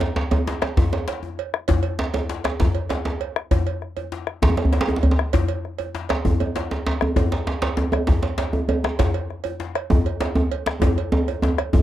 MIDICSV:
0, 0, Header, 1, 4, 480
1, 0, Start_track
1, 0, Tempo, 304569
1, 2649, Time_signature, 12, 3, 24, 8
1, 18633, End_track
2, 0, Start_track
2, 0, Title_t, "Bombo"
2, 271, Note_on_c, 9, 37, 34
2, 429, Note_off_c, 9, 37, 0
2, 979, Note_on_c, 9, 37, 80
2, 1137, Note_off_c, 9, 37, 0
2, 1218, Note_on_c, 9, 43, 116
2, 1376, Note_off_c, 9, 43, 0
2, 2425, Note_on_c, 9, 37, 78
2, 2582, Note_off_c, 9, 37, 0
2, 2667, Note_on_c, 9, 43, 83
2, 2825, Note_off_c, 9, 43, 0
2, 3147, Note_on_c, 9, 37, 29
2, 3304, Note_off_c, 9, 37, 0
2, 3864, Note_on_c, 9, 37, 69
2, 4022, Note_off_c, 9, 37, 0
2, 4104, Note_on_c, 9, 43, 97
2, 4262, Note_off_c, 9, 43, 0
2, 5298, Note_on_c, 9, 37, 77
2, 5456, Note_off_c, 9, 37, 0
2, 5530, Note_on_c, 9, 43, 83
2, 5688, Note_off_c, 9, 43, 0
2, 6021, Note_on_c, 9, 37, 27
2, 6179, Note_off_c, 9, 37, 0
2, 6729, Note_on_c, 9, 37, 64
2, 6887, Note_off_c, 9, 37, 0
2, 6975, Note_on_c, 9, 43, 100
2, 7132, Note_off_c, 9, 43, 0
2, 7700, Note_on_c, 9, 37, 27
2, 7857, Note_off_c, 9, 37, 0
2, 8181, Note_on_c, 9, 37, 70
2, 8339, Note_off_c, 9, 37, 0
2, 8408, Note_on_c, 9, 43, 75
2, 8566, Note_off_c, 9, 43, 0
2, 8904, Note_on_c, 9, 37, 27
2, 9062, Note_off_c, 9, 37, 0
2, 9616, Note_on_c, 9, 37, 69
2, 9773, Note_off_c, 9, 37, 0
2, 9858, Note_on_c, 9, 43, 91
2, 10015, Note_off_c, 9, 43, 0
2, 11047, Note_on_c, 9, 37, 73
2, 11205, Note_off_c, 9, 37, 0
2, 11285, Note_on_c, 9, 43, 91
2, 11442, Note_off_c, 9, 43, 0
2, 11774, Note_on_c, 9, 37, 34
2, 11932, Note_off_c, 9, 37, 0
2, 12504, Note_on_c, 9, 37, 70
2, 12661, Note_off_c, 9, 37, 0
2, 12743, Note_on_c, 9, 43, 102
2, 12901, Note_off_c, 9, 43, 0
2, 13943, Note_on_c, 9, 37, 74
2, 14100, Note_off_c, 9, 37, 0
2, 14175, Note_on_c, 9, 43, 84
2, 14333, Note_off_c, 9, 43, 0
2, 14664, Note_on_c, 9, 37, 32
2, 14821, Note_off_c, 9, 37, 0
2, 15374, Note_on_c, 9, 37, 66
2, 15531, Note_off_c, 9, 37, 0
2, 15616, Note_on_c, 9, 43, 100
2, 15774, Note_off_c, 9, 43, 0
2, 16822, Note_on_c, 9, 37, 89
2, 16979, Note_off_c, 9, 37, 0
2, 17059, Note_on_c, 9, 43, 81
2, 17217, Note_off_c, 9, 43, 0
2, 18015, Note_on_c, 9, 37, 29
2, 18173, Note_off_c, 9, 37, 0
2, 18256, Note_on_c, 9, 37, 73
2, 18413, Note_off_c, 9, 37, 0
2, 18503, Note_on_c, 9, 43, 103
2, 18633, Note_off_c, 9, 43, 0
2, 18633, End_track
3, 0, Start_track
3, 0, Title_t, "Djembe"
3, 17, Note_on_c, 9, 62, 70
3, 174, Note_off_c, 9, 62, 0
3, 255, Note_on_c, 9, 62, 78
3, 266, Note_off_c, 9, 62, 0
3, 266, Note_on_c, 9, 62, 23
3, 423, Note_off_c, 9, 62, 0
3, 496, Note_on_c, 9, 63, 95
3, 502, Note_off_c, 9, 63, 0
3, 502, Note_on_c, 9, 63, 57
3, 660, Note_off_c, 9, 63, 0
3, 748, Note_on_c, 9, 62, 65
3, 906, Note_off_c, 9, 62, 0
3, 979, Note_on_c, 9, 62, 68
3, 1137, Note_off_c, 9, 62, 0
3, 1218, Note_on_c, 9, 62, 73
3, 1220, Note_on_c, 9, 63, 77
3, 1220, Note_on_c, 9, 64, 74
3, 1375, Note_off_c, 9, 62, 0
3, 1377, Note_off_c, 9, 63, 0
3, 1377, Note_off_c, 9, 64, 0
3, 1460, Note_on_c, 9, 62, 22
3, 1461, Note_off_c, 9, 62, 0
3, 1461, Note_on_c, 9, 62, 65
3, 1618, Note_off_c, 9, 62, 0
3, 1697, Note_on_c, 9, 62, 73
3, 1854, Note_off_c, 9, 62, 0
3, 1934, Note_on_c, 9, 63, 55
3, 2092, Note_off_c, 9, 63, 0
3, 2420, Note_on_c, 9, 62, 21
3, 2578, Note_off_c, 9, 62, 0
3, 2658, Note_on_c, 9, 62, 73
3, 2658, Note_on_c, 9, 63, 75
3, 2658, Note_on_c, 9, 64, 74
3, 2815, Note_off_c, 9, 62, 0
3, 2815, Note_off_c, 9, 63, 0
3, 2815, Note_off_c, 9, 64, 0
3, 3134, Note_on_c, 9, 62, 81
3, 3141, Note_off_c, 9, 62, 0
3, 3141, Note_on_c, 9, 62, 20
3, 3299, Note_off_c, 9, 62, 0
3, 3372, Note_on_c, 9, 62, 69
3, 3387, Note_on_c, 9, 63, 53
3, 3530, Note_off_c, 9, 62, 0
3, 3545, Note_off_c, 9, 63, 0
3, 3617, Note_on_c, 9, 62, 66
3, 3774, Note_off_c, 9, 62, 0
3, 3858, Note_on_c, 9, 62, 72
3, 4016, Note_off_c, 9, 62, 0
3, 4093, Note_on_c, 9, 62, 76
3, 4096, Note_on_c, 9, 63, 66
3, 4096, Note_on_c, 9, 64, 63
3, 4251, Note_off_c, 9, 62, 0
3, 4254, Note_off_c, 9, 63, 0
3, 4254, Note_off_c, 9, 64, 0
3, 4330, Note_on_c, 9, 62, 18
3, 4488, Note_off_c, 9, 62, 0
3, 4572, Note_on_c, 9, 62, 69
3, 4575, Note_off_c, 9, 62, 0
3, 4575, Note_on_c, 9, 62, 69
3, 4733, Note_off_c, 9, 62, 0
3, 4811, Note_on_c, 9, 62, 65
3, 4820, Note_on_c, 9, 63, 47
3, 4968, Note_off_c, 9, 62, 0
3, 4977, Note_off_c, 9, 63, 0
3, 5300, Note_on_c, 9, 62, 17
3, 5458, Note_off_c, 9, 62, 0
3, 5536, Note_on_c, 9, 62, 61
3, 5536, Note_on_c, 9, 63, 66
3, 5536, Note_on_c, 9, 64, 66
3, 5693, Note_off_c, 9, 62, 0
3, 5693, Note_off_c, 9, 63, 0
3, 5693, Note_off_c, 9, 64, 0
3, 6256, Note_on_c, 9, 63, 45
3, 6414, Note_off_c, 9, 63, 0
3, 6494, Note_on_c, 9, 62, 61
3, 6651, Note_off_c, 9, 62, 0
3, 6969, Note_on_c, 9, 63, 60
3, 6969, Note_on_c, 9, 64, 64
3, 6975, Note_on_c, 9, 62, 99
3, 7089, Note_off_c, 9, 63, 0
3, 7089, Note_on_c, 9, 63, 71
3, 7126, Note_off_c, 9, 64, 0
3, 7133, Note_off_c, 9, 62, 0
3, 7208, Note_on_c, 9, 62, 69
3, 7246, Note_off_c, 9, 63, 0
3, 7329, Note_on_c, 9, 64, 63
3, 7366, Note_off_c, 9, 62, 0
3, 7450, Note_on_c, 9, 62, 63
3, 7458, Note_off_c, 9, 62, 0
3, 7458, Note_on_c, 9, 62, 53
3, 7486, Note_off_c, 9, 64, 0
3, 7577, Note_off_c, 9, 62, 0
3, 7577, Note_on_c, 9, 62, 98
3, 7691, Note_off_c, 9, 62, 0
3, 7691, Note_on_c, 9, 62, 21
3, 7691, Note_on_c, 9, 63, 56
3, 7697, Note_off_c, 9, 63, 0
3, 7697, Note_on_c, 9, 63, 67
3, 7823, Note_off_c, 9, 62, 0
3, 7823, Note_on_c, 9, 62, 63
3, 7855, Note_off_c, 9, 63, 0
3, 7931, Note_on_c, 9, 64, 66
3, 7980, Note_off_c, 9, 62, 0
3, 8059, Note_on_c, 9, 62, 74
3, 8089, Note_off_c, 9, 64, 0
3, 8216, Note_off_c, 9, 62, 0
3, 8415, Note_on_c, 9, 62, 72
3, 8415, Note_on_c, 9, 63, 71
3, 8415, Note_on_c, 9, 64, 75
3, 8572, Note_off_c, 9, 62, 0
3, 8572, Note_off_c, 9, 63, 0
3, 8572, Note_off_c, 9, 64, 0
3, 8900, Note_on_c, 9, 62, 22
3, 9058, Note_off_c, 9, 62, 0
3, 9135, Note_on_c, 9, 63, 52
3, 9292, Note_off_c, 9, 63, 0
3, 9371, Note_on_c, 9, 62, 69
3, 9528, Note_off_c, 9, 62, 0
3, 9614, Note_on_c, 9, 62, 89
3, 9771, Note_off_c, 9, 62, 0
3, 9850, Note_on_c, 9, 63, 71
3, 9850, Note_on_c, 9, 64, 65
3, 10007, Note_off_c, 9, 64, 0
3, 10008, Note_off_c, 9, 63, 0
3, 10090, Note_on_c, 9, 62, 20
3, 10099, Note_on_c, 9, 63, 61
3, 10247, Note_off_c, 9, 62, 0
3, 10256, Note_off_c, 9, 63, 0
3, 10332, Note_on_c, 9, 62, 73
3, 10344, Note_off_c, 9, 62, 0
3, 10344, Note_on_c, 9, 62, 54
3, 10501, Note_off_c, 9, 62, 0
3, 10576, Note_on_c, 9, 63, 48
3, 10579, Note_on_c, 9, 62, 65
3, 10734, Note_off_c, 9, 63, 0
3, 10736, Note_off_c, 9, 62, 0
3, 10819, Note_on_c, 9, 62, 87
3, 10977, Note_off_c, 9, 62, 0
3, 11060, Note_on_c, 9, 62, 19
3, 11066, Note_on_c, 9, 63, 76
3, 11217, Note_off_c, 9, 62, 0
3, 11223, Note_off_c, 9, 63, 0
3, 11289, Note_on_c, 9, 62, 68
3, 11289, Note_on_c, 9, 63, 69
3, 11289, Note_on_c, 9, 64, 69
3, 11296, Note_off_c, 9, 63, 0
3, 11296, Note_on_c, 9, 63, 75
3, 11446, Note_off_c, 9, 62, 0
3, 11446, Note_off_c, 9, 64, 0
3, 11453, Note_off_c, 9, 63, 0
3, 11538, Note_on_c, 9, 62, 72
3, 11695, Note_off_c, 9, 62, 0
3, 11771, Note_on_c, 9, 62, 21
3, 11773, Note_off_c, 9, 62, 0
3, 11773, Note_on_c, 9, 62, 71
3, 11931, Note_off_c, 9, 62, 0
3, 12005, Note_on_c, 9, 63, 50
3, 12008, Note_on_c, 9, 62, 90
3, 12163, Note_off_c, 9, 63, 0
3, 12165, Note_off_c, 9, 62, 0
3, 12246, Note_on_c, 9, 62, 63
3, 12249, Note_on_c, 9, 63, 67
3, 12403, Note_off_c, 9, 62, 0
3, 12407, Note_off_c, 9, 63, 0
3, 12483, Note_on_c, 9, 63, 68
3, 12641, Note_off_c, 9, 63, 0
3, 12720, Note_on_c, 9, 62, 74
3, 12733, Note_on_c, 9, 63, 64
3, 12733, Note_on_c, 9, 64, 59
3, 12878, Note_off_c, 9, 62, 0
3, 12890, Note_off_c, 9, 63, 0
3, 12890, Note_off_c, 9, 64, 0
3, 12963, Note_on_c, 9, 62, 68
3, 12967, Note_off_c, 9, 62, 0
3, 12967, Note_on_c, 9, 62, 19
3, 13125, Note_off_c, 9, 62, 0
3, 13204, Note_on_c, 9, 62, 70
3, 13362, Note_off_c, 9, 62, 0
3, 13445, Note_on_c, 9, 63, 61
3, 13447, Note_off_c, 9, 63, 0
3, 13447, Note_on_c, 9, 63, 54
3, 13604, Note_off_c, 9, 63, 0
3, 13689, Note_on_c, 9, 63, 75
3, 13847, Note_off_c, 9, 63, 0
3, 13934, Note_on_c, 9, 62, 79
3, 14092, Note_off_c, 9, 62, 0
3, 14175, Note_on_c, 9, 62, 66
3, 14175, Note_on_c, 9, 63, 70
3, 14175, Note_on_c, 9, 64, 66
3, 14176, Note_off_c, 9, 62, 0
3, 14176, Note_on_c, 9, 62, 75
3, 14332, Note_off_c, 9, 63, 0
3, 14332, Note_off_c, 9, 64, 0
3, 14334, Note_off_c, 9, 62, 0
3, 14659, Note_on_c, 9, 62, 19
3, 14817, Note_off_c, 9, 62, 0
3, 14892, Note_on_c, 9, 63, 52
3, 15050, Note_off_c, 9, 63, 0
3, 15127, Note_on_c, 9, 62, 59
3, 15285, Note_off_c, 9, 62, 0
3, 15603, Note_on_c, 9, 63, 95
3, 15609, Note_off_c, 9, 63, 0
3, 15609, Note_on_c, 9, 63, 65
3, 15609, Note_on_c, 9, 64, 65
3, 15767, Note_off_c, 9, 63, 0
3, 15767, Note_off_c, 9, 64, 0
3, 15855, Note_on_c, 9, 62, 21
3, 16013, Note_off_c, 9, 62, 0
3, 16083, Note_on_c, 9, 62, 66
3, 16241, Note_off_c, 9, 62, 0
3, 16318, Note_on_c, 9, 63, 91
3, 16332, Note_off_c, 9, 63, 0
3, 16332, Note_on_c, 9, 63, 48
3, 16490, Note_off_c, 9, 63, 0
3, 16804, Note_on_c, 9, 62, 74
3, 16962, Note_off_c, 9, 62, 0
3, 17047, Note_on_c, 9, 62, 70
3, 17047, Note_on_c, 9, 63, 66
3, 17047, Note_on_c, 9, 64, 66
3, 17049, Note_off_c, 9, 63, 0
3, 17049, Note_on_c, 9, 63, 88
3, 17205, Note_off_c, 9, 62, 0
3, 17205, Note_off_c, 9, 64, 0
3, 17206, Note_off_c, 9, 63, 0
3, 17294, Note_on_c, 9, 62, 20
3, 17451, Note_off_c, 9, 62, 0
3, 17526, Note_on_c, 9, 63, 105
3, 17684, Note_off_c, 9, 63, 0
3, 17784, Note_on_c, 9, 63, 47
3, 17941, Note_off_c, 9, 63, 0
3, 18004, Note_on_c, 9, 63, 87
3, 18019, Note_on_c, 9, 62, 65
3, 18161, Note_off_c, 9, 63, 0
3, 18177, Note_off_c, 9, 62, 0
3, 18250, Note_on_c, 9, 62, 19
3, 18407, Note_off_c, 9, 62, 0
3, 18488, Note_on_c, 9, 63, 70
3, 18488, Note_on_c, 9, 64, 66
3, 18491, Note_off_c, 9, 63, 0
3, 18491, Note_on_c, 9, 63, 90
3, 18633, Note_off_c, 9, 63, 0
3, 18633, Note_off_c, 9, 64, 0
3, 18633, End_track
4, 0, Start_track
4, 0, Title_t, "Drums"
4, 5, Note_on_c, 9, 56, 53
4, 163, Note_off_c, 9, 56, 0
4, 492, Note_on_c, 9, 56, 50
4, 649, Note_off_c, 9, 56, 0
4, 974, Note_on_c, 9, 56, 51
4, 1131, Note_off_c, 9, 56, 0
4, 1463, Note_on_c, 9, 56, 43
4, 1621, Note_off_c, 9, 56, 0
4, 1708, Note_on_c, 9, 56, 43
4, 1866, Note_off_c, 9, 56, 0
4, 2189, Note_on_c, 9, 56, 43
4, 2347, Note_off_c, 9, 56, 0
4, 2645, Note_on_c, 9, 56, 61
4, 2803, Note_off_c, 9, 56, 0
4, 2879, Note_on_c, 9, 56, 46
4, 3037, Note_off_c, 9, 56, 0
4, 3366, Note_on_c, 9, 56, 38
4, 3524, Note_off_c, 9, 56, 0
4, 3849, Note_on_c, 9, 56, 46
4, 4007, Note_off_c, 9, 56, 0
4, 4328, Note_on_c, 9, 56, 38
4, 4486, Note_off_c, 9, 56, 0
4, 4561, Note_on_c, 9, 56, 38
4, 4719, Note_off_c, 9, 56, 0
4, 5054, Note_on_c, 9, 56, 43
4, 5212, Note_off_c, 9, 56, 0
4, 5534, Note_on_c, 9, 56, 50
4, 5691, Note_off_c, 9, 56, 0
4, 5777, Note_on_c, 9, 56, 44
4, 5935, Note_off_c, 9, 56, 0
4, 6250, Note_on_c, 9, 56, 33
4, 6408, Note_off_c, 9, 56, 0
4, 7210, Note_on_c, 9, 56, 41
4, 7368, Note_off_c, 9, 56, 0
4, 7446, Note_on_c, 9, 56, 39
4, 7603, Note_off_c, 9, 56, 0
4, 7926, Note_on_c, 9, 56, 45
4, 8083, Note_off_c, 9, 56, 0
4, 8402, Note_on_c, 9, 56, 64
4, 8560, Note_off_c, 9, 56, 0
4, 8644, Note_on_c, 9, 56, 51
4, 8801, Note_off_c, 9, 56, 0
4, 9117, Note_on_c, 9, 56, 45
4, 9274, Note_off_c, 9, 56, 0
4, 9601, Note_on_c, 9, 56, 45
4, 9758, Note_off_c, 9, 56, 0
4, 10090, Note_on_c, 9, 56, 42
4, 10248, Note_off_c, 9, 56, 0
4, 10340, Note_on_c, 9, 56, 41
4, 10498, Note_off_c, 9, 56, 0
4, 11296, Note_on_c, 9, 56, 55
4, 11454, Note_off_c, 9, 56, 0
4, 11535, Note_on_c, 9, 56, 46
4, 11693, Note_off_c, 9, 56, 0
4, 12010, Note_on_c, 9, 56, 42
4, 12167, Note_off_c, 9, 56, 0
4, 12496, Note_on_c, 9, 56, 44
4, 12654, Note_off_c, 9, 56, 0
4, 12970, Note_on_c, 9, 56, 43
4, 13128, Note_off_c, 9, 56, 0
4, 13214, Note_on_c, 9, 56, 47
4, 13372, Note_off_c, 9, 56, 0
4, 13692, Note_on_c, 9, 56, 47
4, 13850, Note_off_c, 9, 56, 0
4, 14168, Note_on_c, 9, 56, 59
4, 14325, Note_off_c, 9, 56, 0
4, 14410, Note_on_c, 9, 56, 50
4, 14567, Note_off_c, 9, 56, 0
4, 14873, Note_on_c, 9, 56, 47
4, 15031, Note_off_c, 9, 56, 0
4, 15371, Note_on_c, 9, 56, 48
4, 15529, Note_off_c, 9, 56, 0
4, 15855, Note_on_c, 9, 56, 42
4, 16013, Note_off_c, 9, 56, 0
4, 16092, Note_on_c, 9, 56, 48
4, 16249, Note_off_c, 9, 56, 0
4, 16572, Note_on_c, 9, 56, 52
4, 16730, Note_off_c, 9, 56, 0
4, 17048, Note_on_c, 9, 56, 62
4, 17205, Note_off_c, 9, 56, 0
4, 17302, Note_on_c, 9, 56, 47
4, 17460, Note_off_c, 9, 56, 0
4, 17778, Note_on_c, 9, 56, 44
4, 17936, Note_off_c, 9, 56, 0
4, 18260, Note_on_c, 9, 56, 48
4, 18417, Note_off_c, 9, 56, 0
4, 18633, End_track
0, 0, End_of_file